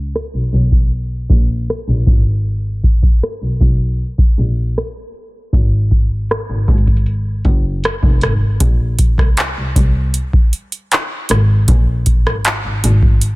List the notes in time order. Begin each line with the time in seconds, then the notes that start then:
Already playing: C#2
0.14 cross-stick, closed hi-hat
0.34 B1
0.53 B1, closed hi-hat
0.72 kick
0.91 closed hi-hat
1.30 A#1, kick, closed hi-hat
1.49 closed hi-hat
1.69 cross-stick, closed hi-hat
1.88 A#1
2.06 G#1, kick, closed hi-hat
2.45 closed hi-hat
2.83 kick, closed hi-hat
3.03 kick
3.22 cross-stick, closed hi-hat
3.42 B1
3.61 B1, kick, closed hi-hat
3.99 closed hi-hat
4.18 kick
4.38 A#1, closed hi-hat
4.57 closed hi-hat
4.76 cross-stick, closed hi-hat
5.14 closed hi-hat
5.53 G#1, kick, closed hi-hat
5.91 kick, closed hi-hat
6.29 cross-stick, closed hi-hat
6.50 G#1
6.68 G#1, kick, closed hi-hat
6.78 closed hi-hat
6.87 kick, closed hi-hat
6.97 closed hi-hat
7.06 closed hi-hat
7.45 F#1, kick, closed hi-hat
7.84 cross-stick, closed hi-hat
8.03 F1, kick
8.21 G#1, cross-stick, closed hi-hat
8.60 A#1, kick, closed hi-hat
8.99 kick, closed hi-hat
9.18 C2, kick, cross-stick
9.37 clap, closed hi-hat
9.57 C2
9.76 C2, kick, closed hi-hat
10.14 closed hi-hat
10.33 kick
10.53 closed hi-hat
10.72 closed hi-hat
10.92 clap, closed hi-hat
11.29 G#1, cross-stick, closed hi-hat
11.68 A#1, kick, closed hi-hat
12.06 kick, closed hi-hat
12.26 G#1, cross-stick
12.45 clap, closed hi-hat
12.65 G#1
12.84 G#1, closed hi-hat
13.03 kick
13.21 closed hi-hat